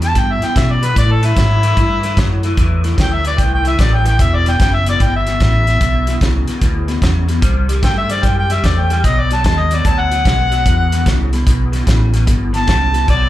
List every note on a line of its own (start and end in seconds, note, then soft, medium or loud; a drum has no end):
0.00 0.14 E2 medium
0.00 0.14 B2 medium
0.00 snare soft
0.00 closed hi-hat medium
0.04 0.21 A5 medium
0.15 0.39 E2 medium
0.15 0.40 G2 medium
0.15 0.39 B2 medium
0.15 kick medium
0.15 snare soft
0.15 closed hi-hat medium
0.19 0.33 G5 medium
0.32 0.47 E5 medium
0.41 0.54 E2 medium
0.41 0.55 B2 medium
0.41 0.59 G5 medium
0.41 muted fingered electric bass stroke soft
0.41 snare soft
0.41 closed hi-hat medium
0.55 0.79 E2 medium
0.55 0.95 B2 medium
0.55 0.80 C#3 medium
0.55 0.73 E5 medium
0.55 kick medium
0.55 snare medium
0.55 closed hi-hat medium
0.72 0.86 D5 medium
0.82 0.94 E2 medium
0.82 0.95 B2 medium
0.82 0.97 B4 medium
0.82 snare soft
0.82 closed hi-hat medium
0.95 1.20 A2 medium
0.95 1.35 A2 medium
0.95 1.20 E3 medium
0.95 1.14 D5 medium
0.95 kick medium
0.95 snare soft
0.95 closed hi-hat medium
1.12 1.27 A4 medium
1.22 1.34 A2 medium
1.22 1.35 E3 medium
1.22 2.42 E4 loud
1.22 snare soft
1.22 closed hi-hat medium
1.36 1.76 G#2 medium
1.36 1.60 A2 medium
1.36 1.60 F#3 medium
1.36 kick medium
1.36 snare loud
1.36 closed hi-hat medium
1.63 1.75 A2 medium
1.63 1.76 E3 medium
1.63 snare soft
1.63 closed hi-hat medium
1.77 2.16 G2 medium
1.77 2.01 A2 medium
1.77 2.01 E3 medium
1.77 kick medium
1.77 snare soft
1.77 closed hi-hat medium
2.03 2.16 A2 medium
2.03 2.16 E3 medium
2.03 snare soft
2.03 closed hi-hat medium
2.17 2.56 F#2 medium
2.17 2.41 A2 medium
2.17 2.42 F#3 medium
2.17 kick medium
2.17 snare loud
2.17 closed hi-hat medium
2.43 2.56 A2 medium
2.43 2.57 E3 medium
2.43 snare soft
2.43 closed hi-hat medium
2.57 2.97 E2 medium
2.57 2.81 A2 medium
2.57 2.82 E3 medium
2.57 kick medium
2.57 snare soft
2.57 closed hi-hat medium
2.84 2.96 A2 medium
2.84 2.97 E3 medium
2.84 snare soft
2.84 closed hi-hat medium
2.97 3.37 D2 medium
2.97 3.21 A2 medium
2.97 3.22 F#3 medium
2.97 kick medium
2.97 snare loud
2.97 closed hi-hat medium
3.01 3.15 G5 medium
3.14 3.26 E5 medium
3.23 3.36 A2 medium
3.23 3.37 E3 medium
3.23 snare soft
3.23 closed hi-hat medium
3.27 3.41 D5 medium
3.37 3.78 C2 medium
3.37 3.62 A2 medium
3.37 3.62 E3 medium
3.37 3.52 G5 medium
3.37 kick medium
3.37 snare soft
3.37 closed hi-hat medium
3.54 3.66 G5 medium
3.64 3.77 A2 medium
3.64 3.77 E3 medium
3.64 3.83 E5 medium
3.64 snare soft
3.64 closed hi-hat medium
3.78 4.18 A1 medium
3.78 4.02 A2 medium
3.78 4.02 F#3 medium
3.78 3.96 D5 medium
3.78 kick medium
3.78 snare loud
3.78 closed hi-hat medium
3.94 4.06 G5 medium
4.04 4.17 A2 medium
4.04 4.18 E3 medium
4.04 4.23 G5 medium
4.04 snare soft
4.04 closed hi-hat medium
4.19 4.58 E1 medium
4.19 4.43 E2 medium
4.19 4.43 B2 medium
4.19 4.36 E5 medium
4.19 kick medium
4.19 snare soft
4.19 closed hi-hat medium
4.35 4.47 D5 medium
4.45 4.58 E2 medium
4.45 4.58 B2 medium
4.45 4.60 G5 medium
4.45 snare soft
4.45 closed hi-hat medium
4.59 4.99 F#1 medium
4.59 4.83 E2 medium
4.59 4.83 C#3 medium
4.59 4.76 G5 medium
4.59 kick medium
4.59 snare loud
4.59 closed hi-hat medium
4.75 4.87 E5 medium
4.86 4.98 E2 medium
4.86 4.99 B2 medium
4.86 5.04 D5 medium
4.86 snare soft
4.86 closed hi-hat medium
5.00 5.39 G1 medium
5.00 5.24 E2 medium
5.00 5.24 B2 loud
5.00 5.14 G5 medium
5.00 kick medium
5.00 snare soft
5.00 closed hi-hat medium
5.16 6.32 E5 loud
5.26 5.39 E2 medium
5.26 5.39 B2 medium
5.26 snare soft
5.26 closed hi-hat medium
5.40 5.80 A1 medium
5.40 5.64 E2 medium
5.40 5.64 C#3 medium
5.40 kick medium
5.40 snare loud
5.40 closed hi-hat medium
5.67 5.79 E2 medium
5.67 5.79 B2 medium
5.67 snare soft
5.67 closed hi-hat medium
5.80 6.20 B1 medium
5.80 6.04 E2 medium
5.80 6.04 B2 medium
5.80 kick medium
5.80 snare soft
5.80 closed hi-hat medium
6.07 6.20 E2 medium
6.07 6.20 B2 medium
6.07 snare soft
6.07 closed hi-hat medium
6.21 6.46 C2 medium
6.21 6.45 E2 medium
6.21 6.46 C#3 medium
6.21 kick medium
6.21 snare loud
6.21 closed hi-hat medium
6.48 6.60 E2 medium
6.48 6.60 B2 medium
6.48 muted fingered electric bass stroke soft
6.48 snare soft
6.48 closed hi-hat medium
6.61 7.01 D2 medium
6.61 6.85 E2 medium
6.61 6.86 B2 medium
6.61 kick medium
6.61 snare soft
6.61 closed hi-hat medium
6.88 7.00 E2 medium
6.88 7.01 B2 medium
6.88 snare soft
6.88 closed hi-hat soft
7.01 7.26 E2 medium
7.01 7.41 E2 medium
7.01 7.26 C#3 medium
7.01 kick medium
7.01 snare loud
7.01 closed hi-hat medium
7.28 7.41 E2 medium
7.28 7.41 B2 medium
7.28 snare soft
7.28 closed hi-hat medium
7.41 7.82 C2 medium
7.41 7.66 C3 medium
7.41 7.66 G3 medium
7.41 kick medium
7.41 snare soft
7.41 closed hi-hat medium
7.68 7.81 C3 medium
7.68 7.81 G3 medium
7.68 snare soft
7.68 closed hi-hat medium
7.82 8.22 G2 medium
7.82 8.07 C3 medium
7.82 8.07 A3 medium
7.82 7.97 G5 medium
7.82 kick medium
7.82 snare medium
7.82 closed hi-hat medium
7.98 8.13 E5 medium
8.09 8.22 C3 medium
8.09 8.22 G3 medium
8.09 8.26 D5 medium
8.09 snare soft
8.09 closed hi-hat medium
8.23 8.62 F#2 medium
8.23 8.47 C3 medium
8.23 8.47 G3 medium
8.23 8.37 G5 medium
8.23 kick medium
8.23 snare soft
8.23 closed hi-hat medium
8.39 8.53 G5 medium
8.49 8.62 C3 medium
8.49 8.63 G3 medium
8.49 8.67 E5 medium
8.49 snare soft
8.49 closed hi-hat medium
8.63 9.03 E2 medium
8.63 8.87 C3 medium
8.63 8.88 A3 medium
8.63 8.81 D5 medium
8.63 kick medium
8.63 snare loud
8.63 closed hi-hat medium
8.79 8.91 G5 medium
8.90 9.03 C3 medium
8.90 9.03 G3 medium
8.90 9.07 G5 medium
8.90 snare soft
8.90 closed hi-hat medium
9.04 9.43 B1 medium
9.04 9.28 B2 medium
9.04 9.28 F#3 medium
9.04 9.21 D#5 medium
9.04 kick medium
9.04 snare soft
9.04 closed hi-hat medium
9.19 9.32 D5 medium
9.31 9.43 B2 medium
9.31 9.44 F#3 medium
9.31 9.45 A5 medium
9.31 snare soft
9.31 closed hi-hat medium
9.44 9.84 D#2 medium
9.44 9.68 B2 medium
9.44 9.69 G#3 medium
9.44 9.61 A5 medium
9.44 kick medium
9.44 snare loud
9.44 closed hi-hat medium
9.60 9.75 D#5 medium
9.71 9.84 B2 medium
9.71 9.84 F#3 medium
9.71 9.88 D5 medium
9.71 snare soft
9.71 closed hi-hat medium
9.85 10.24 D2 medium
9.85 10.09 B2 medium
9.85 10.09 F#3 medium
9.85 10.01 A5 medium
9.85 kick medium
9.85 snare soft
9.85 closed hi-hat medium
10.00 11.17 F#5 loud
10.11 10.24 B2 medium
10.11 10.24 F#3 medium
10.11 snare soft
10.11 closed hi-hat medium
10.25 10.65 B1 medium
10.25 10.49 B2 medium
10.25 10.49 G#3 medium
10.25 kick medium
10.25 snare loud
10.25 closed hi-hat medium
10.52 10.64 B2 medium
10.52 10.65 F#3 medium
10.52 snare soft
10.52 closed hi-hat medium
10.65 10.89 E2 medium
10.65 11.05 E2 medium
10.65 10.90 B2 medium
10.65 kick medium
10.65 snare soft
10.65 closed hi-hat medium
10.92 11.05 E2 medium
10.92 11.05 B2 medium
10.92 snare soft
10.92 closed hi-hat medium
11.06 11.45 C2 medium
11.06 11.30 E2 medium
11.06 11.30 C#3 medium
11.06 kick medium
11.06 snare medium
11.06 closed hi-hat medium
11.33 11.45 E2 medium
11.33 11.46 B2 medium
11.33 snare soft
11.33 closed hi-hat medium
11.46 11.86 B1 medium
11.46 11.70 E2 medium
11.46 11.70 B2 medium
11.46 kick medium
11.46 snare soft
11.46 closed hi-hat medium
11.72 11.85 E2 medium
11.72 11.85 B2 medium
11.72 snare soft
11.72 closed hi-hat medium
11.86 12.26 A1 medium
11.86 12.10 E2 medium
11.86 12.11 C#3 medium
11.86 kick medium
11.86 snare loud
11.86 closed hi-hat medium
12.13 12.25 E2 medium
12.13 12.26 B2 medium
12.13 snare soft
12.13 closed hi-hat medium
12.27 12.66 G1 medium
12.27 12.51 E2 medium
12.27 12.51 B2 medium
12.27 kick medium
12.27 snare soft
12.27 closed hi-hat medium
12.53 12.65 E2 medium
12.53 12.66 B2 medium
12.53 13.07 A5 medium
12.53 snare soft
12.53 closed hi-hat medium
12.66 13.07 C2 medium
12.66 12.91 E2 medium
12.66 12.91 C#3 medium
12.66 kick medium
12.66 snare loud
12.66 closed hi-hat medium
12.94 13.07 E2 medium
12.94 13.06 B2 medium
12.94 snare soft
12.94 closed hi-hat medium
13.08 13.29 B1 medium
13.08 13.29 B2 medium
13.08 13.29 F#3 medium
13.08 13.29 D5 medium
13.08 kick medium
13.08 snare soft
13.08 closed hi-hat medium